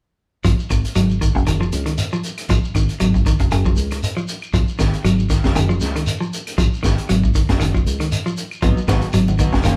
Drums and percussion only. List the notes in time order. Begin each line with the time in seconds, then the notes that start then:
0.45 kick, closed hi-hat, shekere
0.59 shekere
0.70 kick, closed hi-hat, claves, shekere
0.85 closed hi-hat, shekere
0.96 closed hi-hat, claves, shekere
1.10 shekere
1.22 kick, closed hi-hat, shekere
1.35 kick, shekere
1.46 closed hi-hat, claves, shekere
1.62 shekere
1.72 closed hi-hat, shekere
1.86 closed hi-hat, claves, shekere
1.98 closed hi-hat, shekere
2.12 shekere
2.23 closed hi-hat, shekere
2.38 closed hi-hat, claves, shekere
2.49 kick, closed hi-hat, shekere
2.64 shekere
2.75 kick, closed hi-hat, claves, shekere
2.89 closed hi-hat, shekere
3.00 closed hi-hat, claves, shekere
3.14 kick, shekere
3.26 kick, closed hi-hat, shekere
3.39 kick, closed hi-hat, shekere
3.51 closed hi-hat, claves, shekere
3.65 kick, shekere
3.76 closed hi-hat, shekere
3.91 closed hi-hat, claves, shekere
4.03 closed hi-hat, shekere
4.17 shekere
4.28 closed hi-hat, shekere
4.42 claves, shekere
4.54 kick, closed hi-hat, shekere
4.68 shekere
4.79 kick, snare, closed hi-hat, claves, shekere
4.94 closed hi-hat, shekere
5.05 closed hi-hat, claves, shekere
5.19 shekere
5.30 kick, snare, closed hi-hat, shekere
5.44 kick, snare, shekere
5.56 closed hi-hat, claves, shekere
5.70 shekere
5.81 snare, closed hi-hat, shekere
5.96 closed hi-hat, claves, shekere
6.07 closed hi-hat, shekere
6.22 shekere
6.33 closed hi-hat, shekere
6.47 closed hi-hat, claves, shekere
6.58 kick, closed hi-hat, shekere
6.74 shekere
6.83 kick, snare, closed hi-hat, claves, shekere
6.98 closed hi-hat, shekere
7.09 closed hi-hat, claves, shekere
7.24 kick, shekere
7.35 kick, closed hi-hat, shekere
7.49 kick, snare, closed hi-hat, shekere
7.60 closed hi-hat, claves, shekere
7.75 kick, shekere
7.87 closed hi-hat, shekere
8.00 closed hi-hat, claves, shekere
8.12 closed hi-hat, shekere
8.27 shekere
8.37 closed hi-hat, shekere
8.51 claves, shekere
8.62 kick, closed hi-hat, high conga, shekere
8.77 shekere
8.88 kick, snare, closed hi-hat, high conga, claves, shekere
9.02 closed hi-hat, shekere
9.13 closed hi-hat, high conga, claves, shekere
9.28 high conga, shekere
9.39 kick, closed hi-hat, shekere
9.52 kick, snare, shekere
9.63 closed hi-hat, high conga, claves, shekere